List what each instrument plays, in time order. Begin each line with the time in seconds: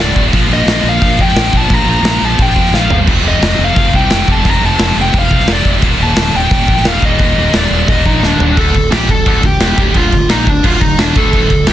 Already playing: fingered electric bass D1
0.02 distorted electric guitar D2 A2, lead electric guitar D5
0.11 distorted electric guitar D2 A2
0.16 fingered electric bass D1, distorted electric guitar D2 A2, kick
0.26 distorted electric guitar D2 A2
0.33 fingered electric bass A#1, distorted electric guitar A#2 F3, kick, open hi-hat
0.41 distorted electric guitar A#2 F3
0.47 fingered electric bass A#1, distorted electric guitar A#2 F3
0.53 distorted electric guitar A#2 F3, lead electric guitar D#5
0.63 fingered electric bass A#1, distorted electric guitar A#2 F3
0.68 distorted electric guitar A#2 F3, snare
0.77 distorted electric guitar A#2 F3, snare
0.83 fingered electric bass A#1, distorted electric guitar A#2 F3
0.89 lead electric guitar F5
0.94 distorted electric guitar A#2 F3
1.01 fingered electric bass A#1, distorted electric guitar A#2 F3, kick, open hi-hat
1.09 distorted electric guitar A#2 F3
1.16 fingered electric bass F2, distorted electric guitar A#2 F3, kick
1.21 distorted electric guitar A#2 F3, lead electric guitar G5
1.29 distorted electric guitar A#2, snare
1.33 fingered electric bass A#1, distorted electric guitar F3, snare, open hi-hat
1.39 distorted electric guitar A#2 F3
1.46 distorted electric guitar A#2 F3
1.53 fingered electric bass A#1, distorted electric guitar A#2 F3, kick
1.57 lead electric guitar A5
1.62 distorted electric guitar A#2 F3
1.70 fingered electric bass A#1, distorted electric guitar A#2 F3, lead electric guitar A#5, kick, open hi-hat
1.79 distorted electric guitar A#2 F3
1.85 fingered electric bass A#1, distorted electric guitar A#2 F3, lead electric guitar A#5
1.93 distorted electric guitar A#2 F3
2.01 fingered electric bass A#1, distorted electric guitar A#2 F3, open hi-hat
2.05 distorted electric guitar A#2, snare
2.10 distorted electric guitar F3
2.15 distorted electric guitar A#2 F3
2.21 fingered electric bass A#1, distorted electric guitar A#2 F3, lead electric guitar A5
2.31 distorted electric guitar A#2 F3
2.39 fingered electric bass A#1, distorted electric guitar A#2 F3, lead electric guitar G5, kick, open hi-hat
2.47 distorted electric guitar A#2 F3
2.54 fingered electric bass F2, distorted electric guitar A#2 F3, kick
2.62 distorted electric guitar A#2 F3
2.66 distorted electric guitar A#2, snare
2.70 fingered electric bass A#1, distorted electric guitar F3, snare
2.75 distorted electric guitar A#2 F3, lead electric guitar F5
2.84 distorted electric guitar A#2 F3
2.90 fingered electric bass G1, distorted electric guitar A#2 F3, floor tom
3.00 distorted electric guitar A#2 F3
3.07 fingered electric bass F1, distorted electric guitar F2 C3, kick, crash
3.15 distorted electric guitar F2 C3
3.23 fingered electric bass F1, distorted electric guitar F2 C3
3.28 distorted electric guitar F2 C3, lead electric guitar D#5
3.39 fingered electric bass F1, distorted electric guitar F2 C3, snare, open hi-hat
3.45 distorted electric guitar F2 C3
3.52 distorted electric guitar F2 C3, snare
3.58 fingered electric bass F1, distorted electric guitar F2 C3
3.64 lead electric guitar F5
3.69 distorted electric guitar F2 C3
3.75 fingered electric bass F1, distorted electric guitar F2 C3, kick, open hi-hat
3.84 distorted electric guitar F2 C3
3.90 fingered electric bass C2, distorted electric guitar F2 C3, kick
3.96 distorted electric guitar F2 C3, lead electric guitar G5
4.06 distorted electric guitar F2 C3
4.10 fingered electric bass F1, distorted electric guitar F2 C3, snare, open hi-hat
4.20 distorted electric guitar F2 C3
4.28 fingered electric bass F1, distorted electric guitar F2 C3, kick
4.32 distorted electric guitar F2, lead electric guitar A5
4.37 distorted electric guitar C3
4.45 fingered electric bass F1, distorted electric guitar F2 C3, kick, open hi-hat
4.49 distorted electric guitar F2 C3, lead electric guitar A#5
4.61 fingered electric bass F1, distorted electric guitar F2 C3
4.65 distorted electric guitar F2 C3, lead electric guitar A5
4.75 distorted electric guitar F2 C3
4.79 fingered electric bass F1, distorted electric guitar F2 C3, snare, open hi-hat
4.91 distorted electric guitar F2 C3
4.96 fingered electric bass F1, distorted electric guitar F2 C3
5.01 lead electric guitar G5
5.06 distorted electric guitar F2 C3
5.13 fingered electric bass F1, distorted electric guitar F2 C3, kick, open hi-hat
5.19 distorted electric guitar F2 C3, lead electric guitar F5
5.29 fingered electric bass C2, distorted electric guitar F2 C3, kick
5.37 distorted electric guitar F2 C3, snare
5.44 distorted electric guitar F2 C3, snare, open hi-hat
5.48 fingered electric bass F1
5.52 distorted electric guitar F2 C3, lead electric guitar D5
5.59 distorted electric guitar F2 C3
5.65 fingered electric bass F1, distorted electric guitar F2 C3, kick
5.75 distorted electric guitar F2 C3
5.82 fingered electric bass D#1, distorted electric guitar D#2 A#2, kick, open hi-hat
5.91 distorted electric guitar D#2 A#2
5.99 fingered electric bass D#1, distorted electric guitar D#2 A#2
6.03 distorted electric guitar A#2, lead electric guitar A5
6.08 distorted electric guitar D#2
6.14 fingered electric bass D#1, distorted electric guitar D#2 A#2, snare, open hi-hat
6.21 distorted electric guitar D#2 A#2
6.29 distorted electric guitar D#2 A#2
6.34 fingered electric bass D#1, distorted electric guitar A#2, lead electric guitar G5
6.40 distorted electric guitar D#2 A#2
6.48 fingered electric bass D#1, distorted electric guitar D#2 A#2, kick, open hi-hat
6.54 distorted electric guitar D#2
6.60 distorted electric guitar D#2 A#2
6.67 fingered electric bass A#1, distorted electric guitar A#2, kick
6.71 distorted electric guitar D#2 A#2
6.77 distorted electric guitar D#2, snare
6.83 fingered electric bass D#1, distorted electric guitar A#2, snare, open hi-hat
6.87 distorted electric guitar D#2 A#2, lead electric guitar F5
6.95 distorted electric guitar D#2 A#2
7.02 fingered electric bass D#1, distorted electric guitar D#2 A#2, lead electric guitar D#5, kick
7.10 distorted electric guitar D#2 A#2
7.19 fingered electric bass D#1, distorted electric guitar D#2 A#2, kick, open hi-hat
7.28 distorted electric guitar D#2 A#2
7.36 fingered electric bass D#1, distorted electric guitar D#2 A#2
7.43 distorted electric guitar D#2 A#2
7.49 distorted electric guitar D#2 A#2
7.53 fingered electric bass D#1, lead electric guitar D5, snare, open hi-hat
7.58 distorted electric guitar D#2 A#2
7.63 distorted electric guitar D#2, snare
7.67 fingered electric bass D#1, distorted electric guitar A#2
7.74 distorted electric guitar D#2 A#2
7.81 distorted electric guitar D#2 A#2
7.88 fingered electric bass D#1, distorted electric guitar D#2 A#2, lead electric guitar D#5, kick, open hi-hat
7.96 distorted electric guitar D#2 A#2
8.03 fingered electric bass A#1, distorted electric guitar D#2 A#2, lead electric guitar D#4, kick
8.11 distorted electric guitar D#2 A#2
8.19 fingered electric bass D#1, distorted electric guitar D#2 A#2, snare
8.25 distorted electric guitar D#2 A#2, lead electric guitar D4
8.34 distorted electric guitar D#2 A#2
8.38 fingered electric bass D#1, distorted electric guitar D#2, floor tom
8.43 distorted electric guitar A#2
8.50 distorted electric guitar D#2 A#2
8.57 fingered electric bass D1, distorted electric guitar D2, lead electric guitar A4, kick, crash
8.75 fingered electric bass D1, distorted electric guitar D2, kick, crash
8.91 fingered electric bass A#1, distorted electric guitar A#2, lead electric guitar G4, snare, crash
9.09 fingered electric bass D1, distorted electric guitar D2, lead electric guitar A4, kick, crash
9.26 fingered electric bass D1, distorted electric guitar D2, kick, crash
9.43 fingered electric bass D1, distorted electric guitar D2, lead electric guitar G4, kick, crash
9.60 fingered electric bass E1, distorted electric guitar E2, snare, crash
9.70 snare
9.78 fingered electric bass D1, distorted electric guitar D2, kick, crash
9.94 fingered electric bass D1, distorted electric guitar D2, lead electric guitar F4, kick, crash
10.12 fingered electric bass D1, distorted electric guitar D2, kick, crash
10.29 fingered electric bass A#1, distorted electric guitar A#2, lead electric guitar D#4, snare, crash
10.47 fingered electric bass D1, distorted electric guitar D2, lead electric guitar D4, kick, crash
10.64 fingered electric bass D1, distorted electric guitar D2, lead electric guitar F4, kick, crash
10.81 fingered electric bass D1, distorted electric guitar D2, lead electric guitar D#4, kick, crash
10.97 fingered electric bass E1, distorted electric guitar E2, lead electric guitar D4, snare, crash
11.08 snare
11.15 fingered electric bass D1, distorted electric guitar D2, lead electric guitar A4, kick, crash
11.33 fingered electric bass D1, distorted electric guitar D2, kick, crash
11.50 fingered electric bass D1, distorted electric guitar D2, kick, crash
11.67 fingered electric bass A#1, distorted electric guitar A#2, lead electric guitar G4, snare, crash